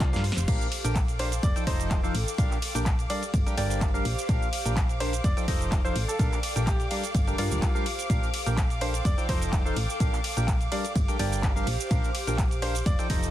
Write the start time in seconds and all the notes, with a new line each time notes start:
Already playing: G3 D4 F4 G4 A#4 C5 D5 F5 C6
0.00 C2, kick, snare, clap, closed hi-hat, shaker
0.13 G2 G3 D4 G4 A#4 F5, snare, closed hi-hat, shaker
0.24 open hi-hat
0.32 snare
0.37 F1, closed hi-hat, shaker
0.48 A#1 A#2 D4 G4 A4 A#4 F5 D6, kick, closed hi-hat, crash, ride, shaker
0.61 G5 D6, shaker
0.72 open hi-hat, ride
0.84 A#1 A#2 D4 G4 A#4 G5, closed hi-hat, shaker
0.96 kick, clap, closed hi-hat, ride, shaker
1.08 closed hi-hat, shaker
1.19 D4 G4 A#4 C5 F5, open hi-hat, ride
1.32 closed hi-hat, shaker
1.43 F1 D5, kick, closed hi-hat, ride, shaker
1.56 F3 D#4 A4 C5 G5, closed hi-hat, shaker
1.67 F1 F3 D#4 A4 C5 D#5, kick, open hi-hat, ride
1.80 closed hi-hat, shaker
1.91 kick, clap, closed hi-hat, ride, shaker
2.04 F3 D#4 A4 C5 F5, shaker
2.15 A1, open hi-hat, ride
2.28 shaker
2.38 A#1 A#2 D4 G4 A#4 F5, kick, closed hi-hat, ride, shaker
2.51 clap, shaker
2.62 open hi-hat, ride
2.75 A#1 A#2 D4 G4 A#4 G5, closed hi-hat, shaker
2.86 kick, clap, closed hi-hat, ride, shaker
2.99 closed hi-hat, shaker
3.10 G3 D4 G4 A#4 D5 F5, open hi-hat, ride
3.23 closed hi-hat, shaker
3.27 F5
3.32 G1 C5, kick, closed hi-hat, ride, shaker
3.46 G3 D4 G4 A#4 G5, closed hi-hat, shaker
3.57 G1 G3 D4 G4 A#4 D5 G5, open hi-hat, ride
3.70 G5, closed hi-hat, shaker
3.81 kick, clap, closed hi-hat, ride, shaker
3.94 G3 D4 G4 A#4 F5, shaker
4.05 A#1, open hi-hat, ride
4.19 shaker
4.29 A#1 A#2 D4 G4 A#4 F5, kick, closed hi-hat, ride, shaker
4.42 shaker
4.53 open hi-hat, ride
4.66 A#1 A#2 D4 G4 A#4 G5, closed hi-hat, shaker
4.77 kick, clap, closed hi-hat, ride, shaker
4.89 closed hi-hat, shaker
5.00 D4 G4 A#4 C5 F5, open hi-hat, ride
5.13 closed hi-hat, shaker
5.24 F1 A4 D5, kick, closed hi-hat, ride, shaker
5.37 F3 D#4 A4 C5 G5, closed hi-hat, shaker
5.48 F1 F3 D#4 A4 C5 D#5, kick, open hi-hat, ride
5.55 D5 G5
5.61 closed hi-hat, shaker
5.72 kick, clap, closed hi-hat, ride, shaker
5.85 F3 D#4 A4 C5 F5, shaker
5.96 A1, open hi-hat, ride
6.08 A4, shaker
6.19 A#1 A#2 D4 G4 A#4 F5, kick, closed hi-hat, ride, shaker
6.32 clap, shaker
6.43 open hi-hat, ride
6.56 A#1 A#2 D4 G4 A#4 G5, closed hi-hat, shaker
6.67 G4, kick, clap, closed hi-hat, ride, shaker
6.80 closed hi-hat, shaker
6.91 G3 D4 G4 A#4 F5, open hi-hat, ride
7.04 closed hi-hat, shaker
7.15 G1, kick, closed hi-hat, ride, shaker
7.27 G3 D4 G4 A#4 G5, closed hi-hat, shaker
7.34 G3 D4 F4 G4 A#4 C5 D5, open hi-hat, ride
7.38 G2
7.45 F5
7.51 D1, closed hi-hat, shaker
7.62 kick, clap, closed hi-hat, ride, shaker
7.75 G3 D4 G4 A#4 F5, shaker
7.86 open hi-hat, ride
7.99 closed hi-hat, shaker
8.10 A#1 A#2 D4 G4 A4 A#4 F5, kick, closed hi-hat, ride, shaker
8.23 shaker
8.28 D6
8.34 open hi-hat, ride
8.39 G5
8.46 A#1 A#2 D4 G4 A#4 G5, closed hi-hat, shaker
8.57 kick, clap, closed hi-hat, ride, shaker
8.70 closed hi-hat, shaker
8.81 D4 G4 A#4 C5 F5, open hi-hat, ride
8.94 closed hi-hat, shaker
9.05 F1 D5, kick, closed hi-hat, ride, shaker
9.18 F3 D#4 A4 C5 G5, closed hi-hat, shaker
9.29 F1 F3 D#4 A4 C5 D#5, kick, open hi-hat, ride
9.42 closed hi-hat, shaker
9.53 kick, clap, closed hi-hat, ride, shaker
9.65 F3 D#4 A4 C5 F5, shaker
9.76 A1, open hi-hat, ride
9.90 shaker
10.00 A#1 A#2 D4 G4 A#4 F5, kick, closed hi-hat, ride, shaker
10.13 clap, shaker
10.24 open hi-hat, ride
10.37 A#1 A#2 D4 G4 A#4 G5, closed hi-hat, shaker
10.48 kick, clap, closed hi-hat, ride, shaker
10.61 closed hi-hat, shaker
10.72 G3 D4 G4 A#4 D5 F5, open hi-hat, ride
10.85 C5, closed hi-hat, shaker
10.95 G1 F5, kick, closed hi-hat, ride, shaker
11.08 G3 D4 G4 A#4 G5, closed hi-hat, shaker
11.19 G1 G3 D4 G4 A#4 D5 G5, open hi-hat, ride
11.32 G5, closed hi-hat, shaker
11.43 kick, clap, closed hi-hat, ride, shaker
11.56 G3 D4 G4 A#4 F5, shaker
11.67 A#1, open hi-hat, ride
11.80 shaker
11.91 A#1 A#2 D4 G4 A#4 F5, kick, closed hi-hat, ride, shaker
12.04 shaker
12.15 open hi-hat, ride
12.27 A#1 A#2 D4 G4 A#4 G5, closed hi-hat, shaker
12.38 kick, clap, closed hi-hat, ride, shaker
12.51 closed hi-hat, shaker
12.62 D4 G4 A#4 C5 F5, open hi-hat, ride
12.75 closed hi-hat, shaker
12.86 F1 A4 D5, kick, closed hi-hat, ride, shaker
12.99 F3 D#4 A4 C5 G5, closed hi-hat, shaker
13.10 F1 F3 D#4 A4 C5 D#5, kick, open hi-hat, ride
13.23 closed hi-hat, shaker